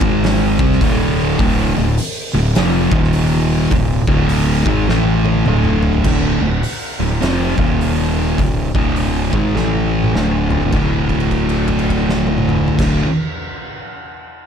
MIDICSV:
0, 0, Header, 1, 4, 480
1, 0, Start_track
1, 0, Tempo, 580833
1, 1152, Time_signature, 4, 2, 24, 8
1, 4514, Tempo, 585938
1, 11889, End_track
2, 0, Start_track
2, 0, Title_t, "Distorted electric guitar"
2, 0, Program_c, 0, 30
2, 21, Note_on_c, 0, 44, 93
2, 25, Note_on_c, 0, 51, 100
2, 28, Note_on_c, 0, 56, 105
2, 487, Note_off_c, 0, 44, 0
2, 490, Note_off_c, 0, 51, 0
2, 491, Note_off_c, 0, 56, 0
2, 494, Note_on_c, 0, 48, 87
2, 498, Note_on_c, 0, 55, 98
2, 500, Note_on_c, 0, 60, 112
2, 668, Note_off_c, 0, 48, 0
2, 670, Note_off_c, 0, 55, 0
2, 671, Note_off_c, 0, 60, 0
2, 676, Note_on_c, 0, 38, 98
2, 680, Note_on_c, 0, 45, 101
2, 683, Note_on_c, 0, 50, 114
2, 1142, Note_off_c, 0, 38, 0
2, 1151, Note_off_c, 0, 45, 0
2, 1152, Note_off_c, 0, 50, 0
2, 1152, Note_on_c, 0, 38, 97
2, 1160, Note_on_c, 0, 45, 100
2, 1161, Note_on_c, 0, 50, 116
2, 1442, Note_off_c, 0, 38, 0
2, 1446, Note_off_c, 0, 45, 0
2, 1447, Note_off_c, 0, 50, 0
2, 1460, Note_on_c, 0, 38, 72
2, 1463, Note_on_c, 0, 45, 75
2, 1600, Note_off_c, 0, 38, 0
2, 1601, Note_off_c, 0, 45, 0
2, 1933, Note_on_c, 0, 38, 70
2, 1938, Note_on_c, 0, 45, 74
2, 2076, Note_off_c, 0, 38, 0
2, 2079, Note_off_c, 0, 45, 0
2, 2116, Note_on_c, 0, 41, 100
2, 2117, Note_on_c, 0, 48, 101
2, 2123, Note_on_c, 0, 53, 104
2, 2404, Note_off_c, 0, 41, 0
2, 2405, Note_off_c, 0, 48, 0
2, 2408, Note_off_c, 0, 53, 0
2, 2411, Note_on_c, 0, 39, 92
2, 2416, Note_on_c, 0, 46, 100
2, 2421, Note_on_c, 0, 51, 116
2, 3066, Note_off_c, 0, 39, 0
2, 3069, Note_off_c, 0, 46, 0
2, 3069, Note_on_c, 0, 38, 74
2, 3072, Note_off_c, 0, 51, 0
2, 3074, Note_on_c, 0, 45, 76
2, 3311, Note_off_c, 0, 38, 0
2, 3313, Note_off_c, 0, 45, 0
2, 3377, Note_on_c, 0, 38, 86
2, 3379, Note_on_c, 0, 45, 99
2, 3383, Note_on_c, 0, 50, 101
2, 3846, Note_off_c, 0, 38, 0
2, 3848, Note_off_c, 0, 45, 0
2, 3850, Note_off_c, 0, 50, 0
2, 3856, Note_on_c, 0, 44, 90
2, 3862, Note_on_c, 0, 51, 95
2, 3866, Note_on_c, 0, 56, 113
2, 4030, Note_off_c, 0, 44, 0
2, 4033, Note_off_c, 0, 51, 0
2, 4035, Note_off_c, 0, 56, 0
2, 4036, Note_on_c, 0, 45, 107
2, 4041, Note_on_c, 0, 52, 103
2, 4046, Note_on_c, 0, 57, 110
2, 4511, Note_off_c, 0, 45, 0
2, 4514, Note_off_c, 0, 52, 0
2, 4516, Note_off_c, 0, 57, 0
2, 4518, Note_on_c, 0, 38, 99
2, 4524, Note_on_c, 0, 45, 104
2, 4526, Note_on_c, 0, 50, 102
2, 4986, Note_off_c, 0, 38, 0
2, 4989, Note_off_c, 0, 45, 0
2, 4993, Note_off_c, 0, 50, 0
2, 4995, Note_on_c, 0, 38, 99
2, 4998, Note_on_c, 0, 45, 101
2, 5004, Note_on_c, 0, 50, 106
2, 5282, Note_off_c, 0, 38, 0
2, 5286, Note_off_c, 0, 45, 0
2, 5289, Note_off_c, 0, 50, 0
2, 5291, Note_on_c, 0, 38, 59
2, 5295, Note_on_c, 0, 45, 74
2, 5436, Note_off_c, 0, 38, 0
2, 5438, Note_off_c, 0, 45, 0
2, 5772, Note_on_c, 0, 38, 65
2, 5773, Note_on_c, 0, 45, 71
2, 5916, Note_off_c, 0, 38, 0
2, 5916, Note_off_c, 0, 45, 0
2, 5947, Note_on_c, 0, 41, 85
2, 5951, Note_on_c, 0, 48, 105
2, 5955, Note_on_c, 0, 53, 106
2, 6240, Note_off_c, 0, 41, 0
2, 6241, Note_off_c, 0, 48, 0
2, 6243, Note_off_c, 0, 53, 0
2, 6244, Note_on_c, 0, 39, 96
2, 6250, Note_on_c, 0, 46, 90
2, 6255, Note_on_c, 0, 51, 97
2, 6902, Note_off_c, 0, 39, 0
2, 6904, Note_off_c, 0, 46, 0
2, 6907, Note_off_c, 0, 51, 0
2, 6910, Note_on_c, 0, 38, 61
2, 6912, Note_on_c, 0, 45, 73
2, 7150, Note_off_c, 0, 38, 0
2, 7151, Note_off_c, 0, 45, 0
2, 7207, Note_on_c, 0, 38, 93
2, 7207, Note_on_c, 0, 45, 89
2, 7210, Note_on_c, 0, 50, 106
2, 7678, Note_off_c, 0, 38, 0
2, 7679, Note_off_c, 0, 45, 0
2, 7681, Note_off_c, 0, 50, 0
2, 7681, Note_on_c, 0, 44, 92
2, 7686, Note_on_c, 0, 51, 98
2, 7690, Note_on_c, 0, 56, 92
2, 7861, Note_off_c, 0, 44, 0
2, 7863, Note_off_c, 0, 51, 0
2, 7865, Note_off_c, 0, 56, 0
2, 7869, Note_on_c, 0, 45, 89
2, 7871, Note_on_c, 0, 52, 94
2, 7879, Note_on_c, 0, 57, 105
2, 8344, Note_off_c, 0, 45, 0
2, 8345, Note_off_c, 0, 52, 0
2, 8349, Note_off_c, 0, 57, 0
2, 8349, Note_on_c, 0, 38, 84
2, 8357, Note_on_c, 0, 45, 89
2, 8359, Note_on_c, 0, 50, 105
2, 8817, Note_off_c, 0, 38, 0
2, 8827, Note_on_c, 0, 38, 86
2, 8829, Note_off_c, 0, 45, 0
2, 8830, Note_off_c, 0, 50, 0
2, 8847, Note_on_c, 0, 45, 102
2, 8859, Note_on_c, 0, 50, 107
2, 10504, Note_off_c, 0, 38, 0
2, 10508, Note_on_c, 0, 38, 86
2, 10525, Note_off_c, 0, 45, 0
2, 10529, Note_on_c, 0, 45, 101
2, 10538, Note_off_c, 0, 50, 0
2, 10541, Note_on_c, 0, 50, 97
2, 10696, Note_off_c, 0, 38, 0
2, 10707, Note_off_c, 0, 45, 0
2, 10713, Note_off_c, 0, 50, 0
2, 11889, End_track
3, 0, Start_track
3, 0, Title_t, "Fingered electric bass"
3, 0, Program_c, 1, 33
3, 10, Note_on_c, 1, 32, 96
3, 458, Note_off_c, 1, 32, 0
3, 491, Note_on_c, 1, 36, 99
3, 659, Note_off_c, 1, 36, 0
3, 667, Note_on_c, 1, 26, 95
3, 1116, Note_off_c, 1, 26, 0
3, 1152, Note_on_c, 1, 26, 97
3, 1431, Note_off_c, 1, 26, 0
3, 1460, Note_on_c, 1, 26, 84
3, 1624, Note_off_c, 1, 26, 0
3, 1933, Note_on_c, 1, 26, 82
3, 2100, Note_off_c, 1, 26, 0
3, 2116, Note_on_c, 1, 29, 93
3, 2393, Note_off_c, 1, 29, 0
3, 2411, Note_on_c, 1, 27, 100
3, 3039, Note_off_c, 1, 27, 0
3, 3068, Note_on_c, 1, 26, 82
3, 3349, Note_off_c, 1, 26, 0
3, 3367, Note_on_c, 1, 26, 96
3, 3817, Note_off_c, 1, 26, 0
3, 3847, Note_on_c, 1, 32, 91
3, 4018, Note_off_c, 1, 32, 0
3, 4040, Note_on_c, 1, 33, 98
3, 4486, Note_off_c, 1, 33, 0
3, 4517, Note_on_c, 1, 26, 90
3, 4962, Note_off_c, 1, 26, 0
3, 4989, Note_on_c, 1, 26, 88
3, 5269, Note_off_c, 1, 26, 0
3, 5289, Note_on_c, 1, 26, 77
3, 5458, Note_off_c, 1, 26, 0
3, 5767, Note_on_c, 1, 26, 80
3, 5937, Note_off_c, 1, 26, 0
3, 5947, Note_on_c, 1, 29, 98
3, 6227, Note_off_c, 1, 29, 0
3, 6250, Note_on_c, 1, 27, 93
3, 6877, Note_off_c, 1, 27, 0
3, 6906, Note_on_c, 1, 26, 80
3, 7186, Note_off_c, 1, 26, 0
3, 7203, Note_on_c, 1, 26, 85
3, 7654, Note_off_c, 1, 26, 0
3, 7683, Note_on_c, 1, 32, 87
3, 7854, Note_off_c, 1, 32, 0
3, 7869, Note_on_c, 1, 33, 98
3, 8317, Note_off_c, 1, 33, 0
3, 8350, Note_on_c, 1, 26, 89
3, 8798, Note_off_c, 1, 26, 0
3, 8825, Note_on_c, 1, 26, 89
3, 10404, Note_off_c, 1, 26, 0
3, 10517, Note_on_c, 1, 26, 90
3, 10688, Note_off_c, 1, 26, 0
3, 11889, End_track
4, 0, Start_track
4, 0, Title_t, "Drums"
4, 10, Note_on_c, 9, 36, 118
4, 93, Note_off_c, 9, 36, 0
4, 195, Note_on_c, 9, 46, 70
4, 206, Note_on_c, 9, 38, 127
4, 278, Note_off_c, 9, 46, 0
4, 289, Note_off_c, 9, 38, 0
4, 490, Note_on_c, 9, 36, 121
4, 572, Note_off_c, 9, 36, 0
4, 597, Note_on_c, 9, 38, 34
4, 670, Note_on_c, 9, 36, 107
4, 671, Note_on_c, 9, 46, 69
4, 680, Note_off_c, 9, 38, 0
4, 753, Note_off_c, 9, 36, 0
4, 754, Note_off_c, 9, 46, 0
4, 1151, Note_on_c, 9, 36, 112
4, 1153, Note_on_c, 9, 46, 74
4, 1234, Note_off_c, 9, 36, 0
4, 1235, Note_off_c, 9, 46, 0
4, 1633, Note_on_c, 9, 46, 68
4, 1715, Note_off_c, 9, 46, 0
4, 2108, Note_on_c, 9, 46, 66
4, 2119, Note_on_c, 9, 38, 122
4, 2191, Note_off_c, 9, 46, 0
4, 2202, Note_off_c, 9, 38, 0
4, 2409, Note_on_c, 9, 36, 123
4, 2492, Note_off_c, 9, 36, 0
4, 2510, Note_on_c, 9, 38, 36
4, 2586, Note_on_c, 9, 46, 69
4, 2593, Note_off_c, 9, 38, 0
4, 2668, Note_off_c, 9, 46, 0
4, 3065, Note_on_c, 9, 46, 58
4, 3069, Note_on_c, 9, 36, 95
4, 3148, Note_off_c, 9, 46, 0
4, 3151, Note_off_c, 9, 36, 0
4, 3367, Note_on_c, 9, 36, 113
4, 3450, Note_off_c, 9, 36, 0
4, 3545, Note_on_c, 9, 46, 61
4, 3628, Note_off_c, 9, 46, 0
4, 3849, Note_on_c, 9, 36, 118
4, 3932, Note_off_c, 9, 36, 0
4, 4041, Note_on_c, 9, 38, 72
4, 4123, Note_off_c, 9, 38, 0
4, 4335, Note_on_c, 9, 48, 89
4, 4417, Note_off_c, 9, 48, 0
4, 4510, Note_on_c, 9, 47, 98
4, 4592, Note_off_c, 9, 47, 0
4, 4661, Note_on_c, 9, 45, 85
4, 4743, Note_off_c, 9, 45, 0
4, 4812, Note_on_c, 9, 43, 109
4, 4894, Note_off_c, 9, 43, 0
4, 4899, Note_on_c, 9, 43, 99
4, 4981, Note_off_c, 9, 43, 0
4, 4990, Note_on_c, 9, 49, 105
4, 4991, Note_on_c, 9, 36, 105
4, 5072, Note_off_c, 9, 49, 0
4, 5073, Note_off_c, 9, 36, 0
4, 5471, Note_on_c, 9, 46, 57
4, 5553, Note_off_c, 9, 46, 0
4, 5955, Note_on_c, 9, 46, 58
4, 5966, Note_on_c, 9, 38, 105
4, 6037, Note_off_c, 9, 46, 0
4, 6048, Note_off_c, 9, 38, 0
4, 6248, Note_on_c, 9, 36, 106
4, 6330, Note_off_c, 9, 36, 0
4, 6438, Note_on_c, 9, 46, 55
4, 6520, Note_off_c, 9, 46, 0
4, 6907, Note_on_c, 9, 36, 88
4, 6907, Note_on_c, 9, 46, 50
4, 6989, Note_off_c, 9, 36, 0
4, 6989, Note_off_c, 9, 46, 0
4, 7205, Note_on_c, 9, 36, 98
4, 7287, Note_off_c, 9, 36, 0
4, 7380, Note_on_c, 9, 46, 49
4, 7462, Note_off_c, 9, 46, 0
4, 7682, Note_on_c, 9, 36, 106
4, 7764, Note_off_c, 9, 36, 0
4, 7872, Note_on_c, 9, 38, 58
4, 7953, Note_off_c, 9, 38, 0
4, 8011, Note_on_c, 9, 48, 55
4, 8093, Note_off_c, 9, 48, 0
4, 8257, Note_on_c, 9, 47, 71
4, 8339, Note_off_c, 9, 47, 0
4, 8358, Note_on_c, 9, 38, 83
4, 8440, Note_off_c, 9, 38, 0
4, 8645, Note_on_c, 9, 43, 99
4, 8727, Note_off_c, 9, 43, 0
4, 8738, Note_on_c, 9, 43, 81
4, 8820, Note_off_c, 9, 43, 0
4, 8824, Note_on_c, 9, 49, 83
4, 8826, Note_on_c, 9, 36, 95
4, 8906, Note_off_c, 9, 49, 0
4, 8908, Note_off_c, 9, 36, 0
4, 9125, Note_on_c, 9, 49, 40
4, 9127, Note_on_c, 9, 36, 58
4, 9207, Note_off_c, 9, 49, 0
4, 9208, Note_off_c, 9, 36, 0
4, 9214, Note_on_c, 9, 57, 44
4, 9296, Note_off_c, 9, 57, 0
4, 9304, Note_on_c, 9, 49, 45
4, 9306, Note_on_c, 9, 36, 58
4, 9386, Note_off_c, 9, 49, 0
4, 9388, Note_off_c, 9, 36, 0
4, 9451, Note_on_c, 9, 57, 45
4, 9533, Note_off_c, 9, 57, 0
4, 9603, Note_on_c, 9, 49, 50
4, 9607, Note_on_c, 9, 36, 66
4, 9685, Note_off_c, 9, 49, 0
4, 9689, Note_off_c, 9, 36, 0
4, 9696, Note_on_c, 9, 57, 52
4, 9777, Note_off_c, 9, 57, 0
4, 9788, Note_on_c, 9, 49, 56
4, 9790, Note_on_c, 9, 36, 66
4, 9870, Note_off_c, 9, 49, 0
4, 9872, Note_off_c, 9, 36, 0
4, 9946, Note_on_c, 9, 38, 88
4, 10028, Note_off_c, 9, 38, 0
4, 10089, Note_on_c, 9, 48, 95
4, 10170, Note_off_c, 9, 48, 0
4, 10182, Note_on_c, 9, 47, 101
4, 10264, Note_off_c, 9, 47, 0
4, 10270, Note_on_c, 9, 45, 98
4, 10352, Note_off_c, 9, 45, 0
4, 10426, Note_on_c, 9, 43, 98
4, 10508, Note_off_c, 9, 43, 0
4, 10515, Note_on_c, 9, 36, 106
4, 10517, Note_on_c, 9, 49, 105
4, 10527, Note_on_c, 9, 38, 95
4, 10596, Note_off_c, 9, 36, 0
4, 10599, Note_off_c, 9, 49, 0
4, 10609, Note_off_c, 9, 38, 0
4, 11889, End_track
0, 0, End_of_file